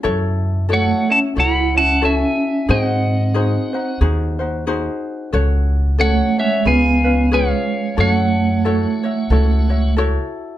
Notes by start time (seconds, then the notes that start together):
0.03 F#2 E4 F#4 A4 C#5
0.69 A3 E4 F#4 A4 C#5
0.73 C#5 F#5
1.09 C#4 E4 F#4 C#5 F#5 A5
1.36 C#2 E4 F#4 A4 C#5 F#5
1.40 B5
1.75 C#4 E4 F#4 C#5 F#5 A5
2.02 C#4 E4 F#4 A4 C#5 E5 A5
2.16 G#5
2.68 G#2 C4 D#4 F#4 G#4 C5 D#5 F#5
3.34 D#4 F#4 G#4 C5
3.73 D#4 F#4 C5
4.01 D#2 D#4 F#4 G#4 C5
4.39 D#4 F#4 C5
4.67 D#4 F#4 G#4 C5
5.33 C#2 C#4 F#4 A4 C#5
5.98 A3 C#4 F#4 A4 C#5 F#5
6.38 G#3 C#4 F#4 C#5 E5
6.65 C#2 B3 C#4 F4 G#4 B4 F5 G#5
7.04 C#4 F4 B4
7.31 G#3 C#4 F4 G#4 B4 F5
7.35 C#5
7.97 F#2 A3 E4 F#4 A4 C#5 F#5
8.65 E4 F#4 A4 C#5
9.03 E4 F#4 C#5
9.30 C#2 E4 F#4 A4 C#5
9.69 E4 F#4 C#5
9.97 E4 F#4 A4 C#5